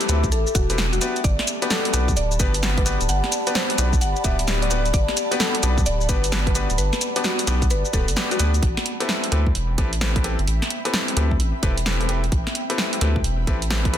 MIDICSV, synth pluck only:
0, 0, Header, 1, 2, 480
1, 0, Start_track
1, 0, Tempo, 461538
1, 1293, Time_signature, 4, 2, 24, 8
1, 14537, End_track
2, 0, Start_track
2, 0, Title_t, "Synth pluck"
2, 0, Program_c, 0, 84
2, 332, Note_on_c, 0, 69, 91
2, 489, Note_off_c, 0, 69, 0
2, 571, Note_on_c, 0, 66, 92
2, 774, Note_off_c, 0, 66, 0
2, 963, Note_on_c, 0, 66, 97
2, 1139, Note_off_c, 0, 66, 0
2, 1290, Note_on_c, 0, 74, 98
2, 1448, Note_off_c, 0, 74, 0
2, 1771, Note_on_c, 0, 69, 92
2, 1929, Note_off_c, 0, 69, 0
2, 2252, Note_on_c, 0, 74, 87
2, 2410, Note_off_c, 0, 74, 0
2, 2492, Note_on_c, 0, 71, 95
2, 2695, Note_off_c, 0, 71, 0
2, 2886, Note_on_c, 0, 71, 98
2, 3060, Note_off_c, 0, 71, 0
2, 3214, Note_on_c, 0, 78, 100
2, 3371, Note_off_c, 0, 78, 0
2, 3695, Note_on_c, 0, 72, 88
2, 3851, Note_off_c, 0, 72, 0
2, 4173, Note_on_c, 0, 78, 89
2, 4330, Note_off_c, 0, 78, 0
2, 4412, Note_on_c, 0, 76, 96
2, 4615, Note_off_c, 0, 76, 0
2, 4805, Note_on_c, 0, 74, 99
2, 4980, Note_off_c, 0, 74, 0
2, 5133, Note_on_c, 0, 74, 98
2, 5290, Note_off_c, 0, 74, 0
2, 5613, Note_on_c, 0, 69, 91
2, 5770, Note_off_c, 0, 69, 0
2, 6094, Note_on_c, 0, 74, 91
2, 6251, Note_off_c, 0, 74, 0
2, 6336, Note_on_c, 0, 71, 93
2, 6537, Note_off_c, 0, 71, 0
2, 6726, Note_on_c, 0, 71, 99
2, 6900, Note_off_c, 0, 71, 0
2, 7052, Note_on_c, 0, 71, 96
2, 7210, Note_off_c, 0, 71, 0
2, 7533, Note_on_c, 0, 66, 94
2, 7690, Note_off_c, 0, 66, 0
2, 8015, Note_on_c, 0, 71, 90
2, 8171, Note_off_c, 0, 71, 0
2, 8253, Note_on_c, 0, 69, 94
2, 8455, Note_off_c, 0, 69, 0
2, 8647, Note_on_c, 0, 66, 96
2, 8821, Note_off_c, 0, 66, 0
2, 14537, End_track
0, 0, End_of_file